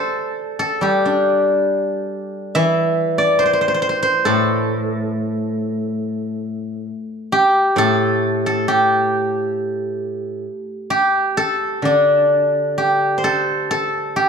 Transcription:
guzheng
Already playing: A4 C5 D5
0.59 A4
0.81 G3 G4
1.05 D4
2.55 E3 E5
3.18 D5
3.39 C5
3.45 C5
3.53 C5
3.61 C5
3.68 C5
3.74 C5
3.82 C5
3.89 C5
4.03 C5
4.25 A2 A4
7.32 G4
7.76 A2 A4
8.46 A4
8.68 G4
10.90 G4
11.37 A4
11.82 D3 D4
12.78 G4
13.18 C5
13.24 A4
13.71 A4
14.16 G4

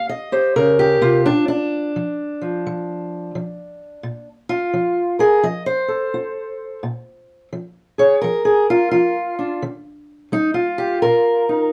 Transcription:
steel-string acoustic guitar
Already playing: A#3 G4
0.09 D#5
0.32 G4 C5
0.56 C#3 A#4
0.79 G4
1.01 C3 F4
1.26 A#2 D4
1.48 D4
1.96 F3
2.41 F3
2.66 F3
3.35 F3
4.03 A#2
4.49 F4
4.73 F3
5.19 G#4 A#4
5.43 F3 D#5
5.66 C5
5.88 A4
6.14 F4
6.83 A#2
7.53 F3
7.98 G#4 C#5
8.21 F3 A#4
8.45 G#4
8.70 F4
8.91 F3 F4
9.39 D4
9.62 D#3
10.32 G3 D#4
10.54 F4
10.78 G4
11.02 A#2 A#4
11.49 D#4

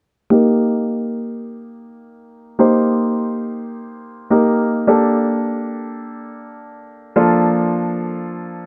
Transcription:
grand piano
0.30 A#3 D#4 G4 A#4
2.59 A#3 D#4 G4 C5
4.30 A#3 D#4 G4 A#4
4.87 A#3 D4 G4 A4
7.16 F3 A#3 D4 F4 A4

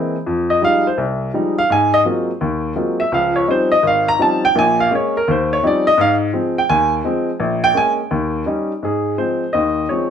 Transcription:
upright piano
Already playing: E3 G#3 A#3 C4
0.26 F2
0.50 D#5
0.62 F3 G3 G#3 D#4 F5
0.87 C5
0.98 C2
1.34 F3 G3 G#3 D#4
1.58 F5
1.70 G#2 G#5
1.94 D#5
2.05 F#3 G#3 A#3 C4 F4
2.41 D#2
2.75 F#3 G#3 A#3 C4 F4
3.00 E5
3.12 C#2 F3 F5
3.36 C#5
3.48 F3 G3 C4 C#4 D#4 C5
3.72 D#5
3.83 G#1
3.87 F5
4.08 A#5
4.19 F3 G3 C4 C#4 D#4 A5
4.45 G5
4.55 A#1 A#2 G#5
4.80 F5
4.91 G#3 A#3 C#4
4.95 C#5
5.17 A#4
5.28 D#2 C5
5.53 C#5
5.63 F3 G3 C4 C#4 D#4
5.67 D5
5.87 D#5
5.98 G#2 F5
6.33 F3 G#3 C4
6.58 G5
6.69 D#2 G#5
7.04 F3 G#3 C4
7.40 A#1
7.64 G5
7.74 G#3 A#3 C#4 G#5
8.11 D#2
8.46 G3 C#4 D#4
8.83 G#2 G#4
9.18 F3 G#3 C4 C5
9.53 D#2 D#3 D#5
9.89 F3 G#3 C4 C#5

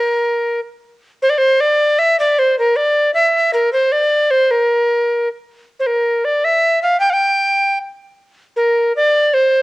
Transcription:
recorder
Already playing: A#4
1.22 C5
1.30 D5
1.38 C5
1.61 D5
1.99 E5
2.20 D5
2.39 C5
2.59 A#4
2.76 D5
3.14 E5
3.53 A#4
3.73 C5
3.92 D5
4.31 C5
4.51 A#4
5.80 C5
5.86 A#4
6.25 D5
6.44 E5
6.83 F5
7.00 G5
7.10 F5 G5
8.56 A#4
8.96 D5
9.34 C5

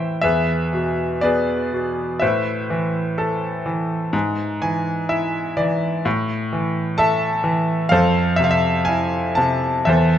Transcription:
grand piano
Already playing: A2 E3 E4 C5 E5 G5
0.21 E2 G#4 B4 E5
0.73 B2
1.21 B3 G#4 B4 D5
1.73 B2
2.19 A2 B4 C5 E5
2.70 E3
3.18 A4
3.66 E3
4.13 G#2
4.62 E3 G#5
5.09 E4 E5
5.57 E3 D5
6.05 A2
6.53 E3
6.98 A4 E5 A5
7.44 E3
7.89 F2 A4 C5 F5
8.36 C3 E5
8.44 F5
8.51 E5
8.85 E4 G#5
9.35 C3 A5
9.85 E2 C5 E5
9.89 A4

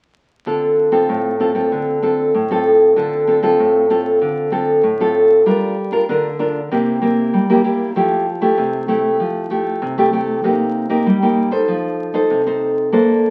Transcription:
nylon-string guitar
0.46 D3 C4 F4 A4
0.92 C4 F4 A4
1.09 A2
1.40 C4 F4 A4
1.55 C4 F4 A4
1.72 D3
2.02 C4 F4 A4
2.34 A2
2.51 C4 F4 A4
2.96 D3 C4 F4 A4
3.27 C4 F4 A4
3.42 C4 F4 A4
3.59 A2
3.90 C4 F4 A4
4.21 D3
4.52 C4 F4 A4
4.83 A2
5.00 C4 F4 A4
5.46 G3 D4 F4 A#4
5.92 D4 F4 A#4
6.09 D3 D4 F4 A#4
6.39 D4 F4 A#4
6.71 C3 A#3 E4 G4
7.02 A#3 E4 G4
7.33 G3
7.50 A#3 E4 G4
7.64 A#3 E4 G4
7.96 F3 A3 E4 G4
8.41 A3 E4 G4
8.58 C3
8.88 A3 E4 G4
9.20 F3
9.50 A3 E4 G4
9.82 C3
9.98 A3 E4 G4
10.13 A3 E4 G4
10.44 C3 A#3 D#4 G4
10.89 A#3 D#4 G4
11.06 G3
11.22 A#3 D#4 G4
11.51 D#4 A4 C5
11.68 F3
12.14 D#4 A4 C5
12.30 C3
12.46 D#4 A4 C5
12.92 A#3 D4 A4 C5

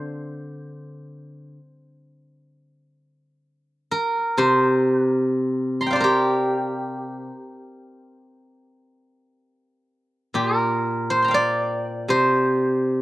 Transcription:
guzheng
Already playing: D3 D4 C5 D5 F5 G5 A#5
3.91 A#4
4.38 C3 C5
4.97 B4
5.11 A#4
5.81 A#5 C6
5.86 G5
5.91 D5 F5
5.96 C5
6.00 G4 A#4
10.34 A#2 G4
10.58 A#4
11.10 C5
11.22 A#5 C6
11.28 F5 G5
11.34 D5
12.08 C3 C5

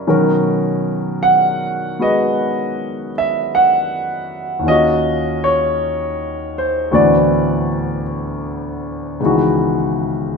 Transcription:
grand piano
0.07 B2 D#3 F#3 C#4 A#4
1.23 F#5
1.99 G#3 B3 F#4 B4 D#5
3.18 E5
3.55 F#5
4.59 D#2 D#3
4.66 C#4 F4 D#5
4.71 F#4
5.44 C#5
6.58 C5
6.91 D2 A2 E3 B3 C4 F#4 D5
9.20 C#2 G#2 E3 B3
9.25 D#3 F#4

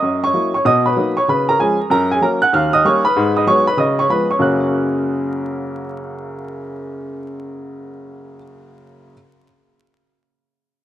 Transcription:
upright piano
Already playing: D#5 D#6
0.02 F#2
0.24 C#5 C#6
0.34 F#3 A#3 E4
0.54 C#5 C#6
0.65 B2 D#5 D#6
0.86 B4 B5
0.96 F#3 A#3 D#4
1.17 C#5 C#6
1.28 C#3 B4 B5
1.49 A#4 A#5
1.59 F3 G#3 C#4 G#4 G#5
1.90 F#2 A#4 A#5
2.11 G#4 G#5
2.21 F#3 A#3 C#4 A#4 A#5
2.42 F#5 F#6
2.53 D#2 F5 F6
2.73 D#5 D#6
2.84 G3 A#3 C#4 C#5 C#6
3.05 B4 B5
3.16 G#2
3.37 D#5 D#6
3.47 F#3 G#3 B3 C#5 C#6
3.67 B4 B5
3.77 C#3 D#5 D#6
3.99 C#5 C#6
4.09 F3 G#3 B3 B4 B5
4.31 C#5 C#6
4.39 F#2 C#3 A#3 C#4 F#4 A#4 F#6

